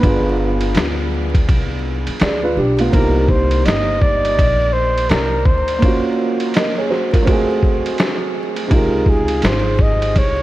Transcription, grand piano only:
0.00 2.14 B3 medium
0.00 2.15 D4 medium
0.04 2.17 F4 medium
0.04 2.18 G#4 medium
2.21 2.42 G#4 soft
2.21 2.42 D5 medium
2.43 2.56 F4 medium
2.43 2.56 B4 medium
2.57 2.78 D4 medium
2.57 2.78 G4 medium
2.80 3.14 B3 medium
2.80 3.14 F4 medium
2.89 5.76 A#3 medium
2.89 5.78 C4 medium
2.95 5.79 D#4 medium
2.95 5.80 G4 medium
5.79 7.22 A#3 medium
5.79 7.23 C#4 medium
5.84 6.54 F4 medium
5.84 6.55 F#4 medium
6.55 6.77 A#4 medium
6.55 6.76 D#5 medium
6.77 6.90 G#4 medium
6.77 6.90 C#5 medium
6.90 7.12 F#4 medium
6.90 7.11 C5 medium
7.12 7.47 F4 medium
7.12 7.47 A#4 medium
7.22 8.66 A3 medium
7.22 8.67 C4 medium
7.28 8.69 F#4 medium
7.28 8.70 G#4 medium
8.68 10.43 C3 medium
8.68 10.43 D#4 medium
8.72 10.43 F4 medium
8.72 10.43 G#4 medium

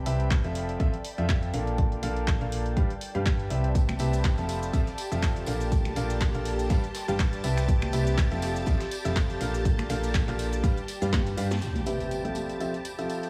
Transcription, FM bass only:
0.06 0.42 C2 medium
0.44 0.78 F1 medium
0.80 0.89 F1 loud
1.18 1.52 F2 loud
1.54 2.01 A#1 medium
2.03 2.38 A#1 medium
2.41 2.75 A#1 medium
2.77 2.86 G1 medium
3.15 3.48 G2 medium
3.51 3.97 C2 medium
4.00 4.35 C2 medium
4.38 4.71 F1 loud
4.73 4.83 F1 loud
5.12 5.45 F1 medium
5.47 5.94 A#1 loud
5.96 6.32 A#1 medium
6.35 6.68 A#1 loud
6.70 6.79 G1 loud
7.08 7.42 G1 medium
7.44 7.91 C2 loud
7.93 8.29 C2 medium
8.31 8.65 F1 loud
8.67 8.76 F1 loud
9.05 9.38 F1 loud
9.41 9.88 A#1 loud
9.90 10.25 A#1 medium
10.28 10.61 A#1 loud
10.64 10.73 G1 medium
11.02 11.35 G2 loud
11.37 11.60 G2 loud

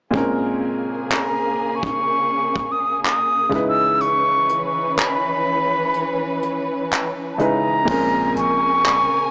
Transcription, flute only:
1.11 1.77 A#5 medium
1.76 2.73 C#6 loud
2.72 3.03 D#6 medium
3.04 3.64 D#6 loud
3.68 4.03 E6 loud
4.01 4.65 C#6 loud
4.66 4.96 C#6 medium
4.98 6.87 B5 medium
7.33 7.42 A5 medium
7.40 8.37 A#5 loud
8.37 9.31 C#6 loud

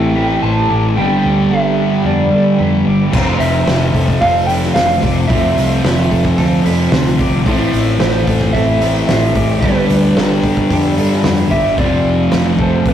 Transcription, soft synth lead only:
0.00 0.44 G5 loud
0.43 0.98 A5 loud
0.97 1.53 G5 loud
1.51 2.08 E5 loud
2.06 2.87 D5 loud
3.40 4.22 E5 loud
4.21 4.48 F5 loud
4.47 4.75 G5 loud
4.74 5.29 F5 loud
5.28 7.18 E5 loud
8.00 8.54 C5 loud
8.53 9.07 E5 loud
9.08 9.62 E5 loud
9.61 11.23 B4 loud
11.51 11.80 E5 loud
11.79 12.32 D5 loud
12.62 12.90 C5 medium
12.88 12.94 B4 loud

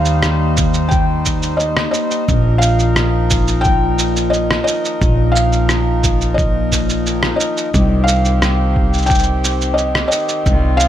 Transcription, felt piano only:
0.00 0.87 F5 loud
0.89 1.54 G5 loud
1.57 1.90 D#5 loud
1.91 2.63 D#5 loud
2.58 3.66 F5 loud
3.61 4.33 G5 loud
4.30 4.63 D#5 loud
4.64 5.36 D#5 loud
5.32 6.32 F5 loud
6.34 7.35 D#5 loud
7.36 8.08 D#5 loud
8.04 9.11 F5 loud
9.06 9.79 G5 loud
9.74 10.06 D#5 medium
10.08 10.80 D#5 loud
10.77 10.88 F5 loud

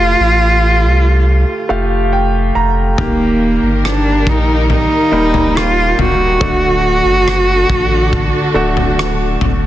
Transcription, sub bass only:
0.00 0.16 F1 medium
0.20 0.86 A1 medium
0.84 1.44 C2 medium
1.70 2.52 F1 medium
2.55 2.95 F1 medium
2.98 3.59 D#1 loud
3.62 4.28 G1 medium
4.27 4.87 A#1 medium
5.12 5.94 D#1 loud
5.98 6.38 D#1 medium
6.41 7.01 D1 loud
7.05 7.65 F#1 medium
7.70 8.30 A1 medium
8.55 9.37 D1 loud
9.41 9.66 F#1 medium

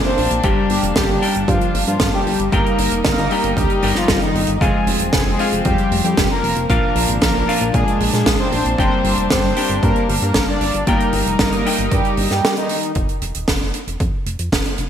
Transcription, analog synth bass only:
0.18 0.28 A#1 medium
0.31 0.41 A#1 medium
0.44 0.54 G1 loud
0.70 0.80 G1 loud
0.83 0.93 F1 medium
0.96 1.06 G1 loud
1.09 1.19 G1 medium
1.35 1.46 G1 medium
1.48 1.58 G2 loud
1.74 1.85 G1 loud
1.87 1.98 G2 medium
2.00 2.11 G1 loud
2.27 2.37 G1 medium
2.40 2.50 G1 medium
2.52 2.63 G1 loud
2.79 2.89 G1 loud
2.92 3.02 F1 medium
3.05 3.15 G1 loud
3.18 3.28 G1 medium
3.44 3.54 G1 medium
3.57 3.67 D2 loud
3.83 3.93 G1 medium
3.96 4.06 G1 medium
4.09 4.19 G1 loud
4.35 4.45 G1 medium
4.48 4.58 G1 medium
4.61 4.71 F1 loud
4.87 4.97 F1 loud
5.00 5.10 D#1 medium
5.13 5.24 F1 loud
5.26 5.37 F1 medium
5.52 5.63 F1 medium
5.65 5.76 F2 loud
5.91 6.02 F1 loud
6.04 6.15 F2 medium
6.18 6.28 F1 loud
6.44 6.54 F1 medium
6.56 6.67 F1 medium
6.70 6.80 A#1 loud
6.96 7.06 A#1 medium
7.09 7.19 G#1 medium
7.22 7.32 A#1 loud
7.35 7.45 A#1 medium
7.61 7.72 A#1 medium
7.74 7.84 A#2 loud
8.00 8.11 A#1 loud
8.13 8.24 A#2 medium
8.26 8.37 A#1 loud
8.53 8.63 A#1 loud
8.65 8.76 A#1 medium
8.79 8.89 G1 loud
9.05 9.15 G1 loud
9.18 9.28 F1 medium
9.31 9.41 G1 loud
9.44 9.54 G1 medium
9.70 9.80 G1 medium
9.83 9.93 G2 loud
10.09 10.19 G1 medium
10.22 10.32 G2 medium
10.35 10.45 G1 loud
10.61 10.71 G1 loud
10.74 10.85 G1 medium
10.87 10.98 G1 loud
11.13 11.24 G1 loud
11.27 11.37 F1 medium
11.39 11.50 G1 loud
11.53 11.63 G1 medium
11.79 11.89 G1 medium
11.92 12.02 G2 loud
12.18 12.28 G1 loud
12.31 12.41 G2 medium
12.96 13.06 F1 loud
13.22 13.32 F1 medium
13.35 13.45 D#1 medium
13.48 13.58 F1 loud
13.61 13.71 F1 medium
13.87 13.98 F1 medium
14.00 14.11 F2 loud
14.26 14.37 F1 medium
14.39 14.50 F2 medium
14.52 14.63 F1 loud
14.78 14.89 F1 medium

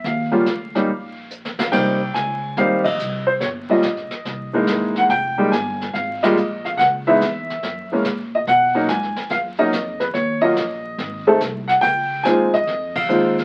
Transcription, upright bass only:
0.04 0.44 D#2 medium
0.47 0.86 D2 medium
0.88 1.69 A#1 medium
1.73 2.14 C2 medium
2.15 2.56 C#2 medium
2.57 2.98 D#2 medium
2.99 3.40 C2 medium
3.41 3.82 G1 medium
3.83 4.10 A#1 medium
4.12 muted upright bass stroke soft
4.25 4.66 C2 medium
4.67 5.08 G#1 medium
5.09 5.50 F1 medium
5.52 5.93 G1 medium
5.94 6.35 G#1 medium
6.36 6.77 A#1 medium
6.79 7.20 C#2 medium
7.21 7.62 E2 medium
7.62 8.03 F#2 medium
8.05 8.46 A#2 medium
8.47 8.88 B2 medium
8.88 9.15 G#2 medium
9.17 muted upright bass stroke soft
9.30 9.71 F#2 medium
9.72 10.13 F2 medium
10.14 10.55 D#2 medium
10.56 10.97 A#1 medium
10.98 11.39 G#1 medium
11.40 11.82 C2 medium
11.82 12.23 C#2 medium
12.25 12.51 D#2 medium
12.54 muted upright bass stroke soft
12.67 13.08 F2 medium
13.09 13.44 D#2 medium

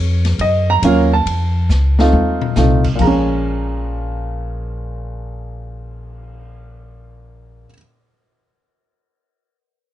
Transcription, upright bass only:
0.00 0.38 F2 medium
0.39 0.81 F#2 medium
0.82 1.25 D#2 medium
1.26 1.68 F2 medium
1.69 2.12 C#2 medium
2.12 2.55 D#2 medium
2.56 2.98 C2 medium
2.99 7.64 A#1 medium

